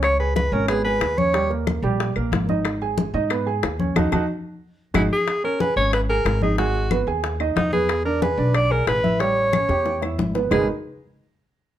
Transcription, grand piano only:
\new Staff \with { instrumentName = "Grand piano" } { \time 4/4 \key gis \minor \tempo 4 = 183 <cis' cis''>8 <gis' gis''>4 <cis' cis''>8 <b b'>8 <gis' gis''>4 <cis' cis''>8 | <g g'>8 <ais ais'>4 <g g'>4 <ais ais'>4 <dis' dis''>8~ | <dis' dis''>8 <gis' gis''>4 <dis' dis''>8 <b b'>8 <gis' gis''>4 <cis' cis''>8 | <dis' fis' a'>8 <dis' fis' a'>8 r2 <dis' fis' gis'>8 r8 |
r8 <cis' cis''>8 <gis' gis''>8 <cis' cis''>4 <gis' gis''>4 <dis' dis''>8 | <gis gis'>4 <b b'>8 <gis' gis''>4 <dis' dis''>4 <b b'>8~ | <b b'>8 <d' d''>8 <gis' gis''>8 <d' d''>4 <gis' gis''>4 <e' e''>8 | <g g'>4 <cis' cis''>8 <g' g''>4 <e' e''>4 <b b'>8 |
<gis dis' fis' gis' ais' b'>8 r2. r8 | }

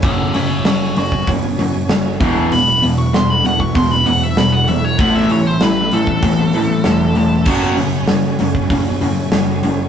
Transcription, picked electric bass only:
\new Staff \with { instrumentName = "Picked electric bass" } { \clef bass \time 4/4 \key fis \minor \tempo 4 = 97 fis,,8 fis,,8 fis,,8 fis,,8 fis,,8 fis,8 fis,,8 e,,8 | e,,8 e,,8 e,,8 e,,8 e,,8 e,8 e,,4 | a,,8 a,,8 a,,8 a,,8 a,,8 a,8 e,,4 | fis,,8 fis,,8 fis,,8 fis,,8 fis,,8 fis,8 fis,,4 | }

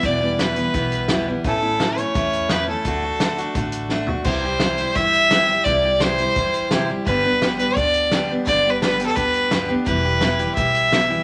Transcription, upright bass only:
\new Staff \with { instrumentName = "Upright bass" } { \clef bass \time 4/4 \key c \lydian \tempo 4 = 171 e,,2 b,,2 | a,,2 e,2 | d,2 a,,2 | c,2 g,,2 |
c,2 g,,2 | g,,2 d,2 | g,,2 d,2 | e,,2 b,,2 | }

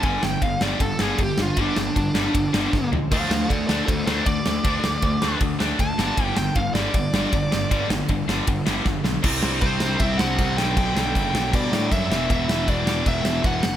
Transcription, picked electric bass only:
\new Staff \with { instrumentName = "Picked electric bass" } { \clef bass \time 4/4 \key g \lydian \tempo 4 = 156 g,,8 g,,8 g,,8 g,,8 g,,8 g,,8 g,,8 g,,8 | g,,8 g,,8 g,,8 g,,8 g,,8 g,,8 g,,8 cis,8 | d,8 d,8 d,8 d,8 d,8 d,8 d,8 d,8 | d,8 d,8 d,8 d,8 d,8 d,8 d,8 g,,8 |
g,,8 g,,8 g,,8 g,,8 g,,8 g,,8 g,,8 g,,8 | g,,8 g,,8 g,,8 g,,8 g,,8 g,,8 g,,8 b,,8 | c,8 c,8 c,4 c,8 c,8 c,8 b,,8 | b,,8 b,,8 fis,,8 b,,8 b,8 a,8 fis,8 e,,8 |
e,,8 e,,8 e,,4 e,,8 e,,8 e,,8 fis,,8 | }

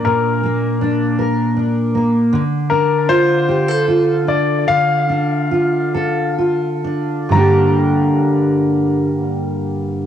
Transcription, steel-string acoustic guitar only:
\new Staff \with { instrumentName = "Steel-string acoustic guitar" } { \time 6/8 \key g \minor \tempo 4. = 49 <bes, bes d' bes'>8 bes8 d'8 bes'8 d'8 bes8 | d8 d'8 f'8 g'16 a'16 f'8 d'8 | d8 d'8 f'8 a'8 f'8 d'8 | <g, d g bes d' g'>2. | }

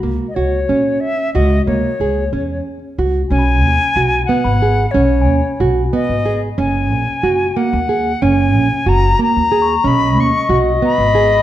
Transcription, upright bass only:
\new Staff \with { instrumentName = "Upright bass" } { \clef bass \time 5/8 \key b \major \tempo 4 = 92 cis,16 r16 cis,8 ais,8 r8 cis,8 | cis,16 r16 cis,8 e,8 r8 cis,8 | b,,8 dis,16 r16 b,,8 r16 gis,,8. | b,,8 dis,16 r16 b,,8 r16 gis,,8. |
fis,,8 ais,,16 r16 fis,,8 r16 dis,8. | fis,,8 ais,,16 r16 fis,,8 r16 dis,8. | b,,8 dis,16 r16 b,,8 r16 gis,,8. | }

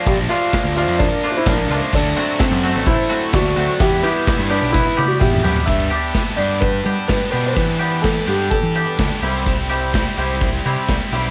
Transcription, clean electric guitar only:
\new Staff \with { instrumentName = "Clean electric guitar" } { \time 4/4 \key g \major \tempo 4 = 128 <f a d' f'>8 <f a d' f'>8 r8 <f a d' f'>8 r8 <f a d' f'>8 r8 <f a d' f'>8 | r8 <fis a c' fis'>8 r8 <fis a c' fis'>8 r8 <fis a c' fis'>8 r8 <fis a c' fis'>8 | r8 <b d' g'>8 r8 <b d' g'>8 r8 <b d' g'>8 r8 <b d' g'>8 | r8 <b d' g'>8 r8 <b d' g'>8 r8 <b d' g'>8 r8 <b d' g'>8 |
r8 <b d' g'>8 r8 <b d' g'>8 r8 <b d' g'>8 r8 <g c' e' g'>8 | r8 <g c' e' g'>8 r8 <g c' e' g'>8 r8 <g c' e' g'>8 r8 <g c' e' g'>8 | }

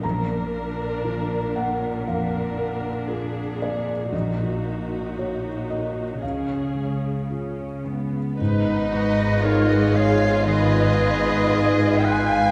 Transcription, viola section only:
\new Staff \with { instrumentName = "Viola section" } { \time 4/4 \key aes \dorian \tempo 4 = 58 << { bes'2 bes'4 aes'4 | ges'2 aes'4 des'8 ces'8 | ces''8 ces''8 aes'4 ces''8 ces''8 aes'8 f'8 | } \\ { d'2 d'2 | ees'2 des'4 r4 | r1 | } >> }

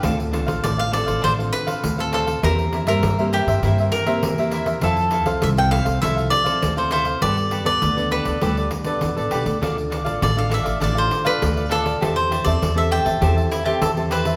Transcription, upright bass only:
\new Staff \with { instrumentName = "Upright bass" } { \clef bass \time 4/4 \key d \dorian \tempo 4 = 100 d,8. a,,16 a,,8. a,,16 a,,8 r8 d,4 | e,8. g,16 g,8. g,16 g,8 r8 e,4 | f,8. c,16 c,8. c,16 c,8 r8 d,4 | g,8. d,16 d,8. d,16 d,8 r8 e,16 a,,16 b,,16 d,16 |
d,8. a,,16 a,,8. a,,16 a,,8 r8 d,4 | e,8. e,16 e,8. e,16 e,8 r8 e,4 | }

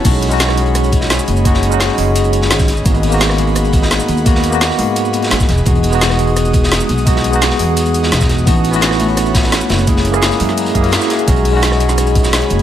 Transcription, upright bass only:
\new Staff \with { instrumentName = "Upright bass" } { \clef bass \time 4/4 \key b \major \tempo 4 = 171 b,,2. r8 fis,,8~ | fis,,4 r8 fis,,4. gis,,4 | gis,,2. r8 dis,8~ | dis,4 r8 gis,4. gis,,8 e,,8 |
e,,2. r8 b,,8~ | b,,4 r8 e,4. e,,4 | a,,2. r8 fis,,8~ | fis,,4 r8 fis,4 fis,8 r4 |
b,,2. r8 fis,,8 | }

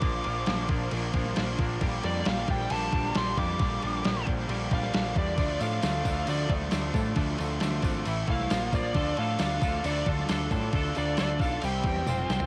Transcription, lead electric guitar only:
\new Staff \with { instrumentName = "Lead electric guitar" } { \time 4/4 \key d \minor \tempo 4 = 134 d'''4. r2 r8 | r8 d''8 f''8 g''8 a''4 c'''8 d'''8~ | d'''4. r4 f''4 d''8~ | d''8 f''4. d''8 r4. |
r2 r8 f''4 d''8~ | d''8 f''4. d''8 r4. | r8 d''8 d''8 f''8 g''2 | }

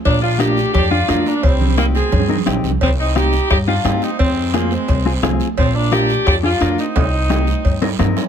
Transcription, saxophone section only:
\new Staff \with { instrumentName = "Saxophone section" } { \time 4/4 \key c \minor \tempo 4 = 174 <bes d'>8 <d' f'>8 <d' g'>4 <d' g'>8 <d' f'>4 <bes d'>8 | <g c'>4 <g bes>8 <c' aes'>4. r4 | <g c'>8 <c' ees'>8 <ees' g'>4 <ees' g'>8 <d' f'>4 <c' ees'>8 | <aes c'>4 <f bes>8 <aes c'>4. r4 |
<f c'>8 <bes d'>8 <d' g'>4 <d' g'>8 <d' f'>4 <c' ees'>8~ | <c' ees'>2. r4 | }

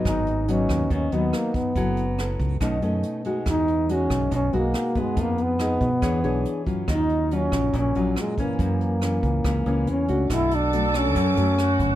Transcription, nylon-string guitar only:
\new Staff \with { instrumentName = "Nylon-string guitar" } { \time 4/4 \key ges \major \tempo 4 = 140 << { <ges b ees'>4 <ges ces' ees'>4. <ges ces' ees'>4. | <ces' fes' a'>8 r8 <ces' fes' a'>4 <a cis' dis'>8 <a cis' dis'>4 <aes dis' fis'>8~ | <aes dis' fis'>4 <gis dis' fis'>4 r8 <gis dis' fis'>4 <b dis' gis'>8~ | <b dis' gis'>4 <ces' ees' aes'>8 r8 <d' gis' cis''>8 <d' gis' cis''>4 <fis cis' f'>8~ |
<fis cis' f'>4 <ges des' f'>4. <ges des' f'>4 <fes bes des'>8~ | <fes bes des'>4 <fes bes des'>4. <fes bes des'>4 <a d' ges'>8~ | \key b \minor <a d' ges'>4 <fis a d'>4 r8 <fis a>4. | } \\ { aes,2 ees2 | ges2 b,2 | e2 b,2 | f2 e2 |
ees2 bes,2 | ges,2 des2 | b,2 fis,2 | } >> }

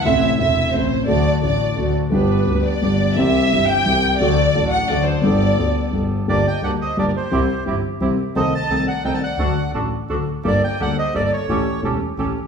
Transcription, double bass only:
\new Staff \with { instrumentName = "Double bass" } { \clef bass \time 3/4 \key g \major \tempo 4 = 173 a,,4 e,,4 a,,4 | d,4 a,,4 d,4 | g,,4 d,4 g,,4 | c,4 g,,4 c,4 |
d,4 a,,4 d,4 | g,,4 d,4 g,,4 | \key g \minor g,,8 r8 d,8 r8 g,,8 r8 | c,8 r8 g,,8 r8 c,8 r8 |
c,8 r8 c,8 r8 c,8 r8 | d,8 r8 a,,8 r8 d,8 r8 | g,,8 r8 d,8 r8 g,,8 r8 | a,,8 r8 e,,8 r8 a,,8 r8 | }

